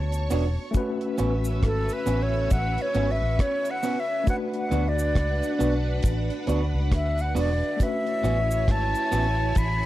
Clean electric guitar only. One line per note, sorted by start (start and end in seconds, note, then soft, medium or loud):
0.30 0.44 B3 medium
0.30 0.44 D4 loud
0.30 0.44 F#4 loud
1.18 1.31 B3 medium
1.18 1.32 C#4 medium
1.18 1.32 F#4 medium
2.06 2.20 B3 medium
2.06 2.20 C#4 medium
2.06 2.20 F#4 medium
2.95 3.08 B3 medium
2.95 3.08 C#4 medium
2.95 3.09 F#4 medium
3.83 3.96 B3 medium
3.83 3.97 C#4 medium
3.83 3.97 F#4 medium
4.71 4.84 B3 medium
4.71 4.85 D4 medium
4.71 4.85 F#4 medium
5.59 5.72 B3 medium
5.59 5.73 D4 medium
5.59 5.73 F#4 medium
6.47 6.60 B3 medium
6.47 6.61 D4 medium
6.47 6.61 F#4 loud
7.35 7.48 B3 medium
7.35 7.49 D4 medium
7.35 7.49 F#4 medium
8.23 8.37 B3 medium
8.23 8.37 C#4 medium
8.23 8.37 F#4 medium
9.11 9.25 B3 medium
9.11 9.25 C#4 loud
9.11 9.25 F#4 medium